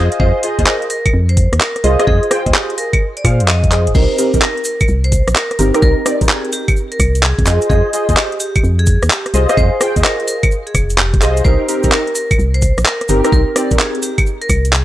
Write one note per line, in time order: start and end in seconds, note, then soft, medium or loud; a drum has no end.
0.00 0.18 F4 medium
0.00 0.18 G#4 medium
0.00 0.18 C5 medium
0.00 0.18 D#5 loud
0.12 closed hi-hat medium
0.20 0.32 F2 loud
0.20 0.41 F4 medium
0.20 0.40 G#4 medium
0.20 0.40 C5 medium
0.20 0.52 C5 loud
0.20 0.41 D#5 loud
0.20 kick loud
0.43 0.57 F4 medium
0.43 0.56 G#4 medium
0.43 0.57 C5 medium
0.43 0.57 D#5 medium
0.43 open hi-hat loud
0.59 0.65 D#2 medium
0.59 0.77 F4 medium
0.59 0.77 G#4 medium
0.59 0.77 C5 medium
0.59 0.77 D#5 loud
0.59 kick medium
0.59 closed hi-hat medium
0.66 0.85 A#4 medium
0.66 clap loud
0.82 closed hi-hat soft
0.90 1.13 A#4 loud
0.90 open hi-hat loud
1.06 kick loud
1.06 closed hi-hat medium
1.06 claves medium
1.14 1.48 F2 loud
1.29 1.52 C5 medium
1.29 closed hi-hat medium
1.37 kick loud
1.37 open hi-hat loud
1.53 1.59 D#2 medium
1.53 cross-stick medium
1.53 closed hi-hat medium
1.60 1.93 A#4 medium
1.60 clap loud
1.76 cross-stick soft
1.76 closed hi-hat medium
1.84 1.97 C2 loud
1.84 1.97 F4 loud
1.84 1.97 G#4 medium
1.84 1.97 C5 medium
1.84 1.97 D#5 loud
1.84 open hi-hat loud
1.99 2.06 F4 loud
1.99 2.06 G#4 loud
1.99 2.06 C5 medium
1.99 2.06 D#5 loud
1.99 cross-stick medium
1.99 closed hi-hat medium
2.07 2.20 F2 loud
2.07 2.23 F4 medium
2.07 2.40 G#4 loud
2.07 2.23 G#4 medium
2.07 2.23 C5 medium
2.07 2.23 D#5 loud
2.07 kick loud
2.23 closed hi-hat soft
2.31 2.44 F4 medium
2.31 2.44 G#4 medium
2.31 2.44 C5 medium
2.31 2.44 G5 loud
2.31 cross-stick medium
2.31 open hi-hat loud
2.46 2.53 D#2 medium
2.46 3.23 F4 medium
2.46 3.23 G#4 medium
2.46 3.23 C5 medium
2.46 3.23 D#5 medium
2.46 kick medium
2.46 closed hi-hat medium
2.54 2.72 G4 medium
2.54 clap loud
2.70 closed hi-hat soft
2.78 3.01 A#4 medium
2.78 open hi-hat loud
2.93 kick loud
2.93 closed hi-hat medium
2.93 claves medium
3.17 3.39 D5 medium
3.17 closed hi-hat medium
3.25 3.42 A#2 loud
3.25 3.70 F4 medium
3.25 3.70 G#4 medium
3.25 3.70 C5 medium
3.25 3.70 F5 medium
3.25 kick medium
3.25 cross-stick soft
3.25 open hi-hat loud
3.25 claves medium
3.40 3.89 F2 medium
3.40 closed hi-hat medium
3.48 3.81 D#5 medium
3.48 clap loud
3.64 kick loud
3.64 closed hi-hat medium
3.72 3.87 F4 medium
3.72 3.87 G#4 medium
3.72 3.87 C5 medium
3.72 3.87 D#5 medium
3.72 clap medium
3.72 open hi-hat loud
3.87 3.94 F1 medium
3.87 closed hi-hat medium
3.95 4.08 C2 loud
3.95 4.16 C4 medium
3.95 4.16 D#4 medium
3.95 4.16 G4 medium
3.95 4.16 A#4 loud
3.95 4.27 C5 loud
3.95 kick loud
3.95 crash medium
3.95 shaker soft
4.18 4.32 C4 medium
4.18 4.32 D#4 medium
4.18 4.32 G4 medium
4.18 4.32 A#4 medium
4.18 open hi-hat loud
4.18 shaker medium
4.34 4.40 A#1 medium
4.34 4.52 C4 medium
4.34 4.52 D#4 medium
4.34 4.52 G4 medium
4.34 4.52 A#4 loud
4.34 kick medium
4.34 closed hi-hat medium
4.34 shaker medium
4.41 4.60 A#4 medium
4.41 clap loud
4.41 shaker soft
4.57 closed hi-hat soft
4.64 4.88 A#4 medium
4.64 open hi-hat loud
4.64 shaker loud
4.81 kick loud
4.81 closed hi-hat medium
4.81 claves medium
4.81 shaker soft
4.88 5.23 C2 loud
4.88 shaker soft
5.04 5.27 C5 medium
5.04 closed hi-hat medium
5.12 kick loud
5.12 open hi-hat loud
5.12 shaker medium
5.28 5.34 A#1 medium
5.28 cross-stick medium
5.28 closed hi-hat medium
5.28 shaker medium
5.35 5.68 A#4 medium
5.35 clap loud
5.35 shaker soft
5.51 cross-stick soft
5.51 closed hi-hat medium
5.59 5.72 G1 loud
5.59 5.72 C4 loud
5.59 5.72 D#4 medium
5.59 5.72 G4 medium
5.59 5.72 A#4 loud
5.59 open hi-hat loud
5.59 shaker medium
5.74 5.81 C4 loud
5.74 5.81 D#4 loud
5.74 5.81 G4 medium
5.74 5.81 A#4 loud
5.74 cross-stick medium
5.74 closed hi-hat medium
5.74 shaker soft
5.82 5.95 C2 loud
5.82 5.98 C4 medium
5.82 5.98 D#4 medium
5.82 5.98 G4 medium
5.82 6.15 A#4 loud
5.82 5.98 A#4 loud
5.82 kick loud
5.82 shaker soft
6.06 6.19 C4 medium
6.06 6.19 D#4 medium
6.06 6.19 G4 medium
6.06 6.19 D5 loud
6.06 cross-stick medium
6.06 open hi-hat loud
6.06 shaker medium
6.21 6.28 A#1 medium
6.21 7.45 C4 medium
6.21 7.45 D#4 medium
6.21 7.45 G4 medium
6.21 7.45 A#4 medium
6.21 kick medium
6.21 closed hi-hat medium
6.21 shaker medium
6.29 6.47 G#4 medium
6.29 clap loud
6.29 shaker soft
6.45 closed hi-hat soft
6.52 6.76 G4 loud
6.52 open hi-hat loud
6.52 shaker medium
6.68 kick loud
6.68 closed hi-hat medium
6.68 claves medium
6.68 shaker medium
6.76 shaker soft
6.92 7.14 A#4 medium
6.92 closed hi-hat medium
7.00 7.34 C2 loud
7.00 kick medium
7.00 cross-stick soft
7.00 open hi-hat loud
7.00 claves medium
7.00 shaker loud
7.15 closed hi-hat medium
7.15 shaker medium
7.22 7.56 G#4 loud
7.22 clap loud
7.22 shaker soft
7.39 7.45 F2 medium
7.39 kick loud
7.39 closed hi-hat medium
7.46 7.59 F2 loud
7.46 7.68 F4 medium
7.46 7.68 G#4 medium
7.46 7.68 C5 medium
7.46 7.68 D#5 loud
7.46 clap medium
7.46 open hi-hat loud
7.46 shaker loud
7.61 closed hi-hat medium
7.61 shaker medium
7.70 7.82 F2 loud
7.70 7.91 F4 medium
7.70 8.02 G#4 loud
7.70 7.91 G#4 medium
7.70 7.91 C5 medium
7.70 7.91 D#5 loud
7.70 kick loud
7.70 shaker soft
7.93 8.07 F4 medium
7.93 8.07 G#4 medium
7.93 8.07 C5 medium
7.93 8.07 D#5 medium
7.93 open hi-hat loud
7.93 shaker medium
8.09 8.15 D#2 medium
8.09 8.27 F4 medium
8.09 8.27 G#4 medium
8.09 8.27 C5 medium
8.09 8.27 D#5 loud
8.09 kick medium
8.09 closed hi-hat medium
8.09 shaker medium
8.17 8.35 G4 medium
8.17 clap loud
8.17 shaker soft
8.32 closed hi-hat soft
8.40 8.63 G4 medium
8.40 open hi-hat medium
8.40 shaker loud
8.56 kick loud
8.56 closed hi-hat medium
8.56 claves medium
8.56 shaker medium
8.64 8.98 F2 loud
8.64 shaker soft
8.79 9.02 G#4 loud
8.79 closed hi-hat medium
8.86 kick loud
8.86 open hi-hat loud
8.86 shaker medium
9.03 9.09 D#2 medium
9.03 cross-stick medium
9.03 closed hi-hat medium
9.03 shaker medium
9.10 9.43 G4 loud
9.10 clap loud
9.10 shaker soft
9.26 cross-stick soft
9.26 closed hi-hat medium
9.34 9.46 C2 loud
9.34 9.47 F4 medium
9.34 9.47 G#4 medium
9.34 9.47 C5 medium
9.34 9.47 D#5 loud
9.34 open hi-hat medium
9.34 shaker loud
9.49 9.56 F4 loud
9.49 9.56 G#4 medium
9.49 9.56 C5 medium
9.49 9.56 D#5 loud
9.49 cross-stick medium
9.49 closed hi-hat medium
9.49 shaker medium
9.57 9.70 F2 loud
9.57 9.73 F4 medium
9.57 9.73 G#4 medium
9.57 9.90 C5 loud
9.57 9.73 C5 medium
9.57 9.73 D#5 loud
9.57 kick loud
9.57 shaker soft
9.81 9.94 F4 medium
9.81 9.94 G#4 medium
9.81 9.94 C5 medium
9.81 9.94 G5 loud
9.81 cross-stick medium
9.81 open hi-hat loud
9.81 shaker medium
9.96 10.03 D#2 medium
9.96 11.20 F4 medium
9.96 11.20 G#4 medium
9.96 11.20 C5 medium
9.96 11.20 D#5 medium
9.96 kick medium
9.96 closed hi-hat medium
9.96 shaker medium
10.04 10.22 A#4 medium
10.04 clap loud
10.04 shaker soft
10.20 closed hi-hat soft
10.27 10.51 A#4 medium
10.27 open hi-hat medium
10.27 shaker medium
10.43 kick loud
10.43 closed hi-hat medium
10.43 claves medium
10.43 shaker medium
10.51 shaker soft
10.67 10.89 G#4 medium
10.67 closed hi-hat medium
10.75 11.23 F1 loud
10.75 kick medium
10.75 cross-stick soft
10.75 open hi-hat loud
10.75 claves medium
10.75 shaker medium
10.90 closed hi-hat medium
10.90 shaker medium
10.98 11.30 G4 medium
10.98 clap loud
10.98 shaker soft
11.14 kick loud
11.14 closed hi-hat medium
11.22 11.42 C2 medium
11.22 11.43 F4 medium
11.22 11.43 G#4 medium
11.22 11.43 C5 medium
11.22 11.43 D#5 loud
11.22 clap medium
11.22 open hi-hat medium
11.22 shaker loud
11.37 closed hi-hat medium
11.37 shaker medium
11.45 11.58 C2 loud
11.45 11.66 C4 medium
11.45 11.66 D#4 medium
11.45 11.66 G4 medium
11.45 11.66 A#4 loud
11.45 11.77 C5 loud
11.45 kick loud
11.45 shaker soft
11.68 11.82 C4 medium
11.68 11.82 D#4 medium
11.68 11.82 G4 medium
11.68 11.82 A#4 medium
11.68 open hi-hat loud
11.68 shaker medium
11.83 11.90 A#1 medium
11.83 12.02 C4 loud
11.83 12.02 D#4 medium
11.83 12.02 G4 medium
11.83 12.02 A#4 loud
11.83 kick medium
11.83 closed hi-hat medium
11.83 shaker medium
11.92 12.10 A#4 medium
11.92 clap loud
11.92 shaker soft
12.07 closed hi-hat soft
12.15 12.38 A#4 medium
12.15 open hi-hat medium
12.15 shaker loud
12.31 kick loud
12.31 closed hi-hat medium
12.31 claves medium
12.31 shaker medium
12.39 12.73 C2 loud
12.39 shaker soft
12.54 12.77 C5 medium
12.54 closed hi-hat medium
12.62 kick loud
12.62 open hi-hat loud
12.62 shaker medium
12.78 12.84 A#1 medium
12.78 cross-stick medium
12.78 closed hi-hat medium
12.78 shaker medium
12.86 13.18 A#4 medium
12.86 clap loud
12.86 shaker soft
13.01 cross-stick soft
13.01 closed hi-hat medium
13.09 13.22 G1 loud
13.09 13.22 C4 loud
13.09 13.22 D#4 medium
13.09 13.22 G4 medium
13.09 13.22 A#4 loud
13.09 open hi-hat medium
13.09 shaker medium
13.24 13.31 C4 loud
13.24 13.31 D#4 medium
13.24 13.31 G4 medium
13.24 13.31 A#4 loud
13.24 cross-stick medium
13.24 closed hi-hat medium
13.24 shaker medium
13.32 13.45 C2 loud
13.32 13.48 C4 medium
13.32 13.48 D#4 medium
13.32 13.48 G4 medium
13.32 13.48 A#4 loud
13.32 13.65 A#4 loud
13.32 kick loud
13.32 shaker soft
13.56 13.69 C4 medium
13.56 13.69 D#4 medium
13.56 13.69 G4 medium
13.56 13.69 D5 loud
13.56 cross-stick medium
13.56 open hi-hat loud
13.56 shaker medium
13.71 13.78 A#1 medium
13.71 14.85 C4 medium
13.71 14.85 D#4 medium
13.71 14.85 G4 medium
13.71 14.85 A#4 medium
13.71 kick medium
13.71 closed hi-hat medium
13.71 shaker medium
13.79 13.97 G#4 medium
13.79 clap loud
13.79 shaker soft
13.95 closed hi-hat soft
14.02 14.26 G4 medium
14.02 open hi-hat medium
14.02 shaker loud
14.18 kick loud
14.18 closed hi-hat medium
14.18 claves medium
14.18 shaker soft
14.26 shaker soft
14.41 14.64 A#4 loud
14.41 closed hi-hat medium
14.49 14.84 C2 loud
14.49 kick medium
14.49 cross-stick soft
14.49 open hi-hat loud
14.49 claves medium
14.49 shaker medium
14.65 closed hi-hat medium
14.65 shaker soft
14.73 14.85 G#4 medium
14.73 clap loud
14.73 shaker soft